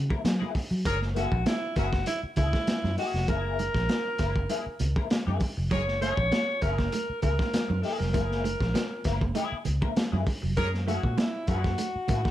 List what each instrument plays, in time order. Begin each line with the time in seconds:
Already playing: alto saxophone F#4
0.10 clean electric guitar A#3 E4 A#4, kick
0.23 fingered electric bass F#3, muted clean electric guitar stroke, snare, closed hi-hat, high conga
0.39 clean electric guitar A#3 E4 G#4, high conga
0.54 muted clean electric guitar stroke, muted fingered electric bass stroke, kick, open hi-hat
0.70 fingered electric bass F#3, muted clean electric guitar stroke
0.85 fingered electric bass F#1, horn section G#4 A#4 C#5, alto saxophone A#4, kick, closed hi-hat, muted conga
1.02 snare
1.15 clean electric guitar A#3 E4 G#4, horn section C#4 E4 A4, alto saxophone F#4, closed hi-hat, muted conga
1.32 fingered electric bass A#1, kick
1.46 alto saxophone E4, snare, closed hi-hat, high conga
1.62 muted clean electric guitar stroke
1.76 fingered electric bass F#1, clean electric guitar A#3 E4 G#4, horn section C#4 E4 A#4, alto saxophone F#4, kick, closed hi-hat
1.92 muted clean electric guitar stroke, kick, snare
2.06 alto saxophone E4, muted clean electric guitar stroke, closed hi-hat, muted conga
2.23 muted fingered electric bass stroke
2.36 fingered electric bass C#2, clean electric guitar A#3 E4 G#4, alto saxophone E4, kick, closed hi-hat, low conga
2.53 muted clean electric guitar stroke, kick, snare
2.67 muted clean electric guitar stroke, snare, closed hi-hat, high conga
2.84 fingered electric bass F#2, muted clean electric guitar stroke, snare, high conga
2.98 clean electric guitar A#3 E4 G#4, alto saxophone F#4, open hi-hat
3.14 fingered electric bass F1, muted clean electric guitar stroke, snare
3.28 fingered electric bass F#1, clean electric guitar A#3 E4 G#4, alto saxophone A#4, kick, closed hi-hat, muted conga
3.59 closed hi-hat, muted conga
3.75 fingered electric bass A#1, muted clean electric guitar stroke, kick, snare
3.89 muted clean electric guitar stroke, snare, closed hi-hat, high conga
4.05 muted clean electric guitar stroke
4.18 fingered electric bass F#1, clean electric guitar A#3 E4 A#4, kick, snare, closed hi-hat
4.36 muted clean electric guitar stroke, kick
4.49 clean electric guitar A#3 E4 G#4, closed hi-hat, muted conga
4.66 muted fingered electric bass stroke
4.79 fingered electric bass C#2, muted clean electric guitar stroke, closed hi-hat, low conga
4.96 clean electric guitar A#3 E4 A#4, kick
5.10 snare, closed hi-hat, high conga
5.27 fingered electric bass F#2, clean electric guitar A#3 E4 G#4, high conga
5.40 muted clean electric guitar stroke, kick, open hi-hat
5.57 fingered electric bass F1, muted clean electric guitar stroke
5.71 fingered electric bass F#1, clean electric guitar F#3, horn section G#4 A#4 C#5, alto saxophone C#5, kick, closed hi-hat, muted conga
5.87 muted clean electric guitar stroke, snare
6.01 clean electric guitar A3 A#3 E4 G#4, horn section C#4 E4 A4, alto saxophone C#5, closed hi-hat, muted conga
6.17 fingered electric bass A#1, kick
6.32 clean electric guitar A#3, snare, closed hi-hat, high conga
6.48 muted clean electric guitar stroke
6.61 fingered electric bass F#1, clean electric guitar A#3 E4 G#4, horn section C#4 E4 A#4, alto saxophone A#4, kick, closed hi-hat
6.78 clean electric guitar A#3, muted clean electric guitar stroke, kick, snare
6.92 clean electric guitar A3, muted clean electric guitar stroke, closed hi-hat, muted conga
7.10 muted fingered electric bass stroke
7.22 fingered electric bass C#2, clean electric guitar A#3 E4 G#4, alto saxophone A#4, muted clean electric guitar stroke, kick, closed hi-hat, muted conga, low conga
7.39 clean electric guitar A#3, muted clean electric guitar stroke, kick, snare
7.53 muted clean electric guitar stroke, snare, closed hi-hat, high conga
7.68 fingered electric bass F#2, clean electric guitar F#3, muted clean electric guitar stroke, high conga
7.83 clean electric guitar A#3 E4 G#4, alto saxophone A4, muted clean electric guitar stroke, open hi-hat
7.99 fingered electric bass F1, clean electric guitar F#3, alto saxophone A#4, muted clean electric guitar stroke, snare
8.13 fingered electric bass F#1, clean electric guitar F#3 A#3 E4 G#4, kick, closed hi-hat, muted conga
8.30 muted clean electric guitar stroke, snare
8.44 clean electric guitar A3, closed hi-hat, muted conga
8.60 fingered electric bass A#1, muted clean electric guitar stroke, kick, snare
8.74 clean electric guitar A#3, muted clean electric guitar stroke, snare, closed hi-hat, high conga
8.91 muted clean electric guitar stroke
9.04 fingered electric bass F#1, clean electric guitar A#3 E4 A#4, kick, snare, closed hi-hat
9.21 clean electric guitar A#3, muted clean electric guitar stroke, kick
9.35 clean electric guitar A3 A#3 E4 G#4, closed hi-hat, muted conga
9.52 muted fingered electric bass stroke
9.65 fingered electric bass C#2, muted clean electric guitar stroke, closed hi-hat, low conga
9.82 clean electric guitar A#3 E4 A#4, kick
9.97 snare, closed hi-hat, high conga
10.12 fingered electric bass F#2, clean electric guitar F#3 A#3 E4 G#4, high conga
10.26 muted clean electric guitar stroke, kick, open hi-hat
10.42 fingered electric bass F1, clean electric guitar F#3, muted clean electric guitar stroke
10.57 fingered electric bass F#2, clean electric guitar F#3, horn section G#4 A#4 C#5, alto saxophone A#4, kick, closed hi-hat, muted conga
10.74 muted clean electric guitar stroke, snare
10.86 clean electric guitar A3 A#3 E4 G#4, horn section C#4 E4 A4, alto saxophone F#4, closed hi-hat, muted conga
11.03 fingered electric bass A#2, kick
11.18 clean electric guitar A#3, alto saxophone E4, snare, closed hi-hat, high conga
11.33 muted clean electric guitar stroke
11.47 fingered electric bass F#2, clean electric guitar A#3 E4 G#4, horn section C#4 E4 A#4, alto saxophone F#4, kick, closed hi-hat
11.64 clean electric guitar A#3, muted clean electric guitar stroke, kick, snare
11.78 clean electric guitar A3, muted clean electric guitar stroke, closed hi-hat, muted conga
11.96 muted fingered electric bass stroke
12.08 fingered electric bass A2, clean electric guitar A#3 E4 G#4, muted clean electric guitar stroke, kick, closed hi-hat, muted conga, low conga
12.25 clean electric guitar A#3, muted clean electric guitar stroke, kick, snare